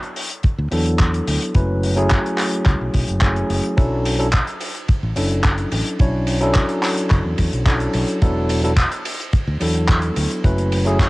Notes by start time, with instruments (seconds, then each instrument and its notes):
0.03 closed hi-hat
0.16 open hi-hat
0.31 closed hi-hat
0.43 muted fingered electric bass stroke, kick, closed hi-hat
0.59 fingered electric bass D2
0.71 fingered electric bass E2, tine electric piano F#3 B3 D4 E4 A4, open hi-hat
0.86 closed hi-hat
1.00 kick, clap, closed hi-hat
1.14 closed hi-hat
1.28 fingered electric bass D2, open hi-hat
1.42 closed hi-hat
1.55 fingered electric bass F#1, tine electric piano F#3 A3 C#4 E4 B4, kick, closed hi-hat
1.83 open hi-hat
1.96 tine electric piano F#3 A3 C#4 E4 G#4, closed hi-hat
2.11 kick, clap, closed hi-hat
2.26 closed hi-hat
2.38 clap, open hi-hat
2.52 closed hi-hat
2.66 fingered electric bass C#2, kick, clap, closed hi-hat
2.81 fingered electric bass B1
2.94 fingered electric bass B1, kick, open hi-hat
3.08 fingered electric bass F#1, closed hi-hat
3.21 tine electric piano F#3 A3 C#4 E4 G#4, kick, clap, closed hi-hat
3.36 closed hi-hat
3.50 fingered electric bass F#1, open hi-hat
3.64 closed hi-hat
3.77 fingered electric bass B1, tine electric piano F#3 C#4 D4 E4 A4, kick, closed hi-hat, ride
4.05 open hi-hat, ride
4.19 tine electric piano F#3 C#4 D4 E4 A4, closed hi-hat
4.33 kick, clap, closed hi-hat, ride
4.47 closed hi-hat
4.60 open hi-hat, ride
4.75 closed hi-hat
4.88 muted fingered electric bass stroke, kick, closed hi-hat, ride
5.03 fingered electric bass A1
5.15 fingered electric bass F#1, tine electric piano F#3 C#4 D4 E4 A4, open hi-hat, ride
5.31 closed hi-hat
5.44 kick, clap, closed hi-hat, ride
5.58 closed hi-hat
5.71 fingered electric bass A1, open hi-hat, ride
5.86 closed hi-hat
5.99 fingered electric bass B1, tine electric piano F#3 C#4 D4 E4 C#5, kick, closed hi-hat, ride
6.27 open hi-hat, ride
6.40 tine electric piano F#3 C#4 D4 E4 A4, closed hi-hat
6.55 kick, clap, closed hi-hat, ride
6.69 closed hi-hat
6.83 clap, open hi-hat, ride
6.97 closed hi-hat
7.10 fingered electric bass F#1, kick, clap, closed hi-hat, ride
7.25 fingered electric bass E2
7.38 fingered electric bass E2, kick, open hi-hat, ride
7.53 fingered electric bass B1, closed hi-hat
7.66 tine electric piano F#3 C#4 D4 E4 A4, kick, clap, closed hi-hat, ride
7.80 closed hi-hat
7.93 fingered electric bass B1, open hi-hat, ride
8.08 closed hi-hat
8.22 fingered electric bass E1, tine electric piano F#3 B3 D4 E4 A4, kick, closed hi-hat, ride
8.49 open hi-hat, ride
8.64 tine electric piano F#3 B3 D4 E4 A4, closed hi-hat
8.77 kick, clap, closed hi-hat, ride
8.92 closed hi-hat
9.05 open hi-hat, ride
9.20 closed hi-hat
9.33 muted fingered electric bass stroke, kick, closed hi-hat, ride
9.47 fingered electric bass D2
9.60 fingered electric bass E2, tine electric piano F#3 B3 D4 E4 A4, open hi-hat, ride
9.75 closed hi-hat
9.89 kick, clap, closed hi-hat, ride
10.02 closed hi-hat
10.16 fingered electric bass D2, open hi-hat, ride
10.30 closed hi-hat
10.44 fingered electric bass F#1, tine electric piano F#3 A3 C#4 E4 B4, kick, closed hi-hat, ride
10.58 closed hi-hat
10.72 open hi-hat, ride
10.85 tine electric piano F#3 A3 C#4 E4 G#4, closed hi-hat
10.99 kick, clap, closed hi-hat, ride